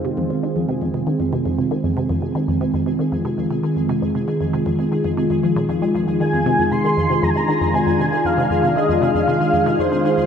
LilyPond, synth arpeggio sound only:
\new Staff \with { instrumentName = "Synth arpeggio sound" } { \clef bass \time 4/4 \key f \dorian \tempo 4 = 117 c16 f,16 c16 ees16 f,16 c16 f,16 c16 ees16 f,16 c16 f,16 c16 ees16 f,16 c16 | f,16 c16 ees16 f,16 c16 f,16 c16 ees16 f,16 c16 f,16 c16 ees16 f,16 c16 f,16 | c16 ees16 f,16 c16 f,16 c16 ees16 f,16 c16 f,16 f16 bes,16 f,16 aes16 f,16 f,16 | ees16 f,16 c16 f,16 c16 ees16 f,16 c16 f,16 c16 ees16 f,16 c16 f,16 c16 ees16 |
f,16 c16 f,16 c16 ees16 f,16 c16 f,16 c16 ees16 f,16 c16 f,16 c16 ees16 f,16 | }